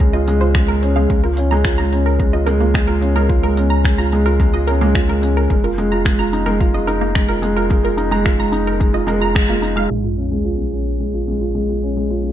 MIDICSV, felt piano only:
0, 0, Header, 1, 2, 480
1, 0, Start_track
1, 0, Tempo, 550459
1, 957, Time_signature, 4, 2, 24, 8
1, 10747, End_track
2, 0, Start_track
2, 0, Title_t, "Felt piano"
2, 0, Program_c, 0, 0
2, 0, Control_c, 0, 64, 127
2, 0, Note_on_c, 0, 56, 73
2, 0, Note_on_c, 0, 61, 81
2, 0, Note_on_c, 0, 65, 82
2, 7, Note_off_c, 0, 56, 0
2, 7, Note_on_c, 0, 56, 88
2, 120, Note_off_c, 0, 65, 0
2, 120, Note_on_c, 0, 65, 76
2, 187, Note_off_c, 0, 65, 0
2, 241, Note_off_c, 0, 56, 0
2, 241, Note_on_c, 0, 56, 102
2, 308, Note_off_c, 0, 56, 0
2, 360, Note_on_c, 0, 65, 83
2, 473, Note_off_c, 0, 65, 0
2, 479, Note_on_c, 0, 56, 106
2, 547, Note_off_c, 0, 56, 0
2, 723, Note_off_c, 0, 61, 0
2, 723, Note_on_c, 0, 61, 77
2, 834, Note_off_c, 0, 61, 0
2, 839, Note_on_c, 0, 56, 102
2, 948, Note_off_c, 0, 56, 0
2, 961, Note_on_c, 0, 56, 96
2, 969, Control_c, 0, 64, 0
2, 1028, Note_off_c, 0, 56, 0
2, 1084, Note_on_c, 0, 65, 74
2, 1135, Control_c, 0, 64, 127
2, 1149, Note_off_c, 0, 65, 0
2, 1203, Note_on_c, 0, 61, 80
2, 1314, Note_off_c, 0, 61, 0
2, 1324, Note_on_c, 0, 56, 104
2, 1435, Note_off_c, 0, 56, 0
2, 1437, Note_on_c, 0, 65, 80
2, 1551, Note_off_c, 0, 65, 0
2, 1562, Note_on_c, 0, 56, 81
2, 1674, Note_off_c, 0, 56, 0
2, 1679, Note_on_c, 0, 61, 74
2, 1792, Note_off_c, 0, 61, 0
2, 1917, Note_on_c, 0, 56, 81
2, 1986, Note_off_c, 0, 56, 0
2, 2034, Note_on_c, 0, 65, 75
2, 2104, Note_off_c, 0, 65, 0
2, 2155, Note_on_c, 0, 56, 105
2, 2225, Note_off_c, 0, 56, 0
2, 2272, Note_on_c, 0, 65, 81
2, 2389, Note_off_c, 0, 65, 0
2, 2389, Note_on_c, 0, 56, 107
2, 2462, Note_off_c, 0, 56, 0
2, 2508, Note_on_c, 0, 65, 77
2, 2581, Note_off_c, 0, 65, 0
2, 2628, Note_on_c, 0, 61, 77
2, 2747, Note_off_c, 0, 61, 0
2, 2752, Note_on_c, 0, 56, 100
2, 2869, Note_off_c, 0, 56, 0
2, 2870, Note_on_c, 0, 65, 84
2, 2988, Note_off_c, 0, 65, 0
2, 2994, Note_on_c, 0, 56, 81
2, 3110, Note_off_c, 0, 56, 0
2, 3116, Note_on_c, 0, 61, 80
2, 3231, Note_off_c, 0, 61, 0
2, 3355, Note_on_c, 0, 56, 82
2, 3424, Note_off_c, 0, 56, 0
2, 3473, Note_on_c, 0, 65, 80
2, 3544, Note_off_c, 0, 65, 0
2, 3599, Note_on_c, 0, 56, 97
2, 3666, Note_off_c, 0, 56, 0
2, 3718, Note_on_c, 0, 65, 75
2, 3832, Note_off_c, 0, 65, 0
2, 3839, Note_on_c, 0, 56, 107
2, 3907, Note_off_c, 0, 56, 0
2, 3959, Note_on_c, 0, 65, 78
2, 4027, Note_off_c, 0, 65, 0
2, 4082, Note_on_c, 0, 61, 79
2, 4194, Note_off_c, 0, 61, 0
2, 4200, Note_on_c, 0, 56, 106
2, 4313, Note_off_c, 0, 56, 0
2, 4318, Note_on_c, 0, 65, 84
2, 4431, Note_on_c, 0, 56, 79
2, 4432, Note_off_c, 0, 65, 0
2, 4548, Note_off_c, 0, 56, 0
2, 4552, Note_on_c, 0, 61, 79
2, 4669, Note_off_c, 0, 61, 0
2, 4795, Note_on_c, 0, 56, 82
2, 4807, Control_c, 0, 64, 0
2, 4865, Note_off_c, 0, 56, 0
2, 4916, Note_on_c, 0, 65, 75
2, 4970, Control_c, 0, 64, 127
2, 4985, Note_off_c, 0, 65, 0
2, 5039, Note_on_c, 0, 56, 101
2, 5107, Note_off_c, 0, 56, 0
2, 5161, Note_on_c, 0, 65, 76
2, 5273, Note_off_c, 0, 65, 0
2, 5282, Note_on_c, 0, 56, 103
2, 5348, Note_off_c, 0, 56, 0
2, 5400, Note_on_c, 0, 65, 77
2, 5467, Note_off_c, 0, 65, 0
2, 5518, Note_on_c, 0, 63, 77
2, 5632, Note_off_c, 0, 63, 0
2, 5634, Note_on_c, 0, 56, 105
2, 5750, Note_off_c, 0, 56, 0
2, 5758, Note_on_c, 0, 65, 91
2, 5872, Note_off_c, 0, 65, 0
2, 5876, Note_on_c, 0, 56, 80
2, 5991, Note_off_c, 0, 56, 0
2, 5993, Note_on_c, 0, 63, 85
2, 6109, Note_off_c, 0, 63, 0
2, 6232, Note_on_c, 0, 56, 88
2, 6303, Note_off_c, 0, 56, 0
2, 6351, Note_on_c, 0, 65, 74
2, 6423, Note_off_c, 0, 65, 0
2, 6470, Note_on_c, 0, 56, 105
2, 6542, Note_off_c, 0, 56, 0
2, 6594, Note_on_c, 0, 65, 74
2, 6710, Note_off_c, 0, 65, 0
2, 6712, Note_on_c, 0, 56, 103
2, 6783, Note_off_c, 0, 56, 0
2, 6830, Note_on_c, 0, 65, 74
2, 6902, Note_off_c, 0, 65, 0
2, 6953, Note_on_c, 0, 63, 81
2, 7069, Note_off_c, 0, 63, 0
2, 7073, Note_on_c, 0, 56, 107
2, 7189, Note_off_c, 0, 56, 0
2, 7189, Note_on_c, 0, 65, 81
2, 7307, Note_off_c, 0, 65, 0
2, 7312, Note_on_c, 0, 56, 75
2, 7429, Note_off_c, 0, 56, 0
2, 7431, Note_on_c, 0, 63, 81
2, 7548, Note_off_c, 0, 63, 0
2, 7672, Note_on_c, 0, 56, 89
2, 7743, Note_off_c, 0, 56, 0
2, 7790, Note_on_c, 0, 65, 75
2, 7862, Note_off_c, 0, 65, 0
2, 7907, Note_on_c, 0, 56, 115
2, 7980, Note_off_c, 0, 56, 0
2, 8024, Note_on_c, 0, 65, 84
2, 8145, Note_off_c, 0, 65, 0
2, 8151, Note_on_c, 0, 56, 102
2, 8222, Note_off_c, 0, 56, 0
2, 8273, Note_on_c, 0, 65, 77
2, 8343, Note_off_c, 0, 65, 0
2, 8389, Note_on_c, 0, 63, 83
2, 8507, Note_off_c, 0, 63, 0
2, 8507, Note_on_c, 0, 56, 99
2, 8619, Note_off_c, 0, 56, 0
2, 8632, Note_on_c, 0, 56, 74
2, 8648, Control_c, 0, 64, 0
2, 8703, Note_off_c, 0, 56, 0
2, 8753, Note_on_c, 0, 65, 55
2, 8778, Control_c, 0, 64, 127
2, 8824, Note_off_c, 0, 65, 0
2, 8870, Note_on_c, 0, 61, 54
2, 8988, Note_off_c, 0, 61, 0
2, 8992, Note_on_c, 0, 56, 77
2, 9109, Note_off_c, 0, 56, 0
2, 9109, Note_on_c, 0, 65, 59
2, 9225, Note_on_c, 0, 56, 55
2, 9227, Note_off_c, 0, 65, 0
2, 9345, Note_off_c, 0, 56, 0
2, 9348, Note_on_c, 0, 61, 56
2, 9467, Note_off_c, 0, 61, 0
2, 9591, Note_on_c, 0, 56, 61
2, 9663, Note_off_c, 0, 56, 0
2, 9712, Note_on_c, 0, 65, 58
2, 9783, Note_off_c, 0, 65, 0
2, 9833, Note_on_c, 0, 56, 81
2, 9903, Note_off_c, 0, 56, 0
2, 9949, Note_on_c, 0, 65, 59
2, 10067, Note_off_c, 0, 65, 0
2, 10068, Note_on_c, 0, 56, 78
2, 10141, Note_off_c, 0, 56, 0
2, 10193, Note_on_c, 0, 65, 54
2, 10264, Note_off_c, 0, 65, 0
2, 10316, Note_on_c, 0, 61, 58
2, 10431, Note_off_c, 0, 61, 0
2, 10434, Note_on_c, 0, 56, 72
2, 10550, Note_off_c, 0, 56, 0
2, 10554, Note_on_c, 0, 65, 61
2, 10670, Note_off_c, 0, 65, 0
2, 10670, Note_on_c, 0, 56, 57
2, 10747, Note_off_c, 0, 56, 0
2, 10747, End_track
0, 0, End_of_file